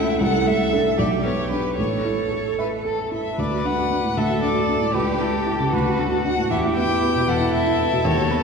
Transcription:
Already playing: C#2 A3 C#4 E4 A4 E5
0.20 C2 A4 F#5
0.47 A3 E5
0.73 D4 A4
0.98 B1 G4 D5
1.24 B3 C#5
1.51 D4 G4 B4
1.77 A1 A4 C#5
2.05 E4
2.32 A4
2.59 B4 E5
2.85 A4
3.12 E4 E5
3.38 D2 B4 D5
3.51 F#4
3.65 D4 F#5
3.78 F#4
3.91 D4
4.04 A2
4.16 D2 A4 E5
4.30 F#4
4.43 D4 D5
4.55 F#4
4.69 D4
4.81 A2
4.94 C#2 G4 B4
5.07 G4
5.21 E4 A4
5.34 G4
5.47 E4
5.60 C#3
5.73 D2 F#4 B4
5.86 F#4
5.99 D4 A4
6.12 F#4
6.25 D4 F#5
6.38 A2
6.51 E2 E4 G4 E5
6.64 E4
6.76 B3 G5
6.89 E4
7.02 B3
7.15 B2
7.28 E2 E4 A4 F#5
7.41 E4
7.54 B3 E5
7.67 E4
7.80 B3
7.92 B2
8.05 D#2 F#4 C#5
8.17 F#4
8.30 B3 B4

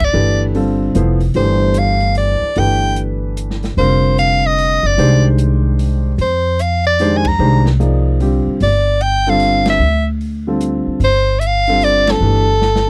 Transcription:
Already playing: G1
0.00 kick, ride
0.04 D5
0.13 G1 E3 A3 D4 G4 B4
0.55 D3 G3 C4 F4 A4, open hi-hat
0.95 F1 F3 B3 E4 A4 C5, closed hi-hat
1.20 open hi-hat
1.34 G1 E3 A3 D4 G4 C5, open hi-hat
1.74 closed hi-hat
1.79 F5
2.00 open hi-hat
2.15 D5, open hi-hat
2.42 muted upright bass stroke
2.55 G1 E3 A3 D4 G4 B4 G5, open hi-hat
2.96 closed hi-hat
3.37 closed hi-hat
3.50 snare
3.63 snare, open hi-hat
3.77 F1 D3 G3 C4 F4 A#4 C5, open hi-hat
4.18 F5, closed hi-hat
4.46 D#5
4.58 open hi-hat
4.83 F#1 D5
4.98 C2 D#3 G#3 D4 G4 C5, open hi-hat
5.38 closed hi-hat
5.79 open hi-hat
6.18 F2 C5, open hi-hat
6.59 F5, closed hi-hat
6.85 D5, open hi-hat
6.99 D#3 G#3 D4 G4 C5, open hi-hat
7.17 G#5
7.25 A#5, kick, ride
7.39 C2 D#3 G#3 D4 G4 C5
7.66 snare
7.80 F3 A#3 D#4 G#4 D5, closed hi-hat
8.20 D3 G3 C4 F4 G4, open hi-hat
8.47 muted upright bass stroke
8.60 G1 D5, open hi-hat
9.01 G5, closed hi-hat
9.26 D3 G3 C4 F4 A4 F5, open hi-hat
9.40 open hi-hat
9.66 snare, ride
9.70 E5
9.79 D2
10.21 open hi-hat
10.47 D3 G3 C4 F4 A4
10.61 closed hi-hat
10.87 muted upright bass stroke
11.00 G1, open hi-hat
11.04 C5
11.40 E5, closed hi-hat
11.47 F5
11.67 D3 G3 C4 F4 A4, open hi-hat
11.81 D5, open hi-hat
12.07 A4, snare, ride
12.21 G1 E3 A3 D4 G4 B4
12.62 snare
12.76 snare

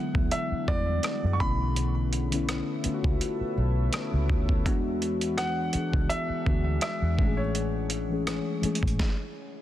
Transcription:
Already playing: D3 E3 F#3 G#3 B3 D4 G#4 F#5
0.00 E4
0.13 D2 D3 F#3 G#3 B3, kick
0.17 E4
0.31 E5, closed hi-hat
0.52 muted fingered electric bass stroke
0.66 E2 D3 F#3 G3 B3 D5, kick
0.70 E4
0.74 G#3
1.03 cross-stick, closed hi-hat
1.24 F#2
1.33 C#6
1.39 B1 D3 A3 B3 C#4 A4 B4 C#5 E5 B5, kick
1.43 E4
1.76 closed hi-hat
2.13 closed hi-hat
2.31 D3 A3 B3 C#4, closed hi-hat
2.35 E4
2.49 cross-stick, closed hi-hat
2.83 D3 A3 B3 C#4, muted fingered electric bass stroke, closed hi-hat
2.87 F4
2.94 F#4
3.04 C#2, kick
3.21 closed hi-hat
3.41 muted fingered electric bass stroke
3.58 B1
3.93 cross-stick, closed hi-hat
4.13 C#2
4.29 D2, kick
4.49 kick
4.64 E2 E3 G#3 B3 D4 G#4 F#5, kick, closed hi-hat
4.69 F#4
5.02 closed hi-hat
5.21 closed hi-hat
5.38 F#5, cross-stick, closed hi-hat
5.73 E3 G#3 B3 D4, muted fingered electric bass stroke, closed hi-hat
5.77 G#4
5.92 C#2 E3 G#3 B3 D4, kick
5.96 F#4
6.09 E5, closed hi-hat
6.30 muted fingered electric bass stroke
6.45 D2 E3 G#3 B3 D4, kick
6.49 F#4
6.81 E5, cross-stick, closed hi-hat
7.02 E2
7.17 A1 E3 G#3 A3 C#4 E4 C#5, kick
7.21 F#4
7.28 G#4
7.37 C#5
7.55 closed hi-hat
7.90 closed hi-hat
8.09 E3 G#3 A3 C#4
8.13 G#4
8.27 cross-stick, closed hi-hat
8.61 E3 G#3 A3 C#4, muted fingered electric bass stroke, closed hi-hat
8.66 G#4
8.75 closed hi-hat
8.83 A1, kick
8.87 closed hi-hat
8.99 kick, snare

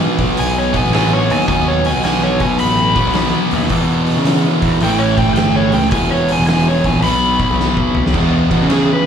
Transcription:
Already playing: B2 F#3 B3
0.18 B1, kick, open hi-hat
0.37 B1 G#5, open hi-hat
0.58 C#5
0.73 B2 F#3 B3 G#5, kick, open hi-hat
0.85 A1
0.93 B2 F#3 B3 G#5, snare, open hi-hat
1.13 C#5
1.30 D#2 G#5, open hi-hat
1.40 snare
1.48 D#2 B2 F#3 B3 G#5, kick, open hi-hat
1.68 C#5
1.85 G#5, open hi-hat
1.96 B1
2.04 G#5, snare, open hi-hat
2.23 C#5
2.40 B2 G#5, kick, open hi-hat
2.59 A1 B5, open hi-hat
2.96 B2 F#3 B3, kick, open hi-hat
3.07 B1
3.14 B2 F#3 B3, snare, open hi-hat
3.51 D#2, open hi-hat
3.62 snare
3.70 E2 B2 E3, kick, open hi-hat
4.07 snare, open hi-hat
4.17 C#3
4.25 snare, open hi-hat
4.62 E2, kick, open hi-hat
4.81 A1 A2 E3 A3 G5, open hi-hat
4.99 C#5
5.17 G5, kick, open hi-hat
5.28 G1
5.36 G5, snare, open hi-hat
5.56 C#5
5.72 C#2 G5, open hi-hat
5.91 E1 E2 B2 E3 G#5, kick, open hi-hat
6.11 C#5
6.28 G#5, snare, open hi-hat
6.40 E1
6.47 G#5, snare, open hi-hat
6.68 C#5
6.84 A#1 G#5, kick, open hi-hat
7.02 B1 B2 F#3 B3 B5, open hi-hat
7.39 kick, open hi-hat
7.50 B1
7.60 snare
7.77 kick
7.95 B1, mid tom
8.06 snare
8.14 E2 B2, kick, crash
8.51 E2 B2, kick, ride
8.61 C#3
8.69 E2 C#3, snare, ride
8.73 G#4
8.93 B4

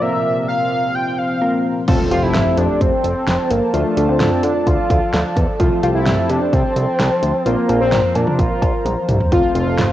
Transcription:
Already playing: C3 F3 F4
0.02 A#2 A#3 C4 F4 A#4 E5
0.48 F5
0.95 G5
1.18 F5
1.41 A#3 C4 F4 A#4
1.87 F1 F3 A3 C4 F4 A4 C5 A5, kick, closed hi-hat, crash, impact
2.11 F1 F3 A3 C4 F4 G4, closed hi-hat
2.22 F1 E4
2.34 F1, snare, closed hi-hat, mid tom
2.57 F2 D4, closed hi-hat
2.81 F1 C4, kick, closed hi-hat
3.04 F1, closed hi-hat
3.27 F1, snare, closed hi-hat
3.50 G1 A#3, closed hi-hat
3.74 D2 F3 A3 D4 F4 A4 D5, closed hi-hat
3.97 D2 F3 A3 D4 F4, closed hi-hat
4.08 D2 C4
4.20 D2, snare, closed hi-hat, mid tom
4.43 D3 D4, closed hi-hat
4.67 D2 F4, kick, closed hi-hat
4.90 D2, kick, closed hi-hat
5.13 D2, snare, closed hi-hat
5.37 E2, kick, closed hi-hat
5.60 C2 F3 A3 C4 F4 C5, kick, closed hi-hat
5.83 C2 F3 A3 C4 F4 G4, closed hi-hat
5.95 C2 E4
6.06 C2, snare, closed hi-hat, mid tom
6.29 C3 D4, closed hi-hat
6.53 C2 C4, kick, closed hi-hat
6.76 C2, closed hi-hat
6.99 C2, snare, closed hi-hat
7.23 D2, closed hi-hat
7.46 A#1 F3 A#3 C4 F4 A#4 A#5, closed hi-hat
7.69 A#1 F3 A#3 C4 F4, closed hi-hat, cowbell
7.81 A#1 C4
7.92 A#1, snare, closed hi-hat, mid tom
8.15 A#2 D4, closed hi-hat, cowbell
8.27 mid tom
8.39 A#1 F4, kick, closed hi-hat
8.62 A#1, kick, closed hi-hat, cowbell
8.85 A#1, closed hi-hat, high tom
9.09 C2, closed hi-hat, mid tom
9.20 floor tom
9.32 F1 F3 A3 C4 F4 A4 A5, kick, closed hi-hat
9.55 F1 F3 A3 C4 F4, closed hi-hat
9.67 F1
9.78 F1, snare, closed hi-hat, mid tom

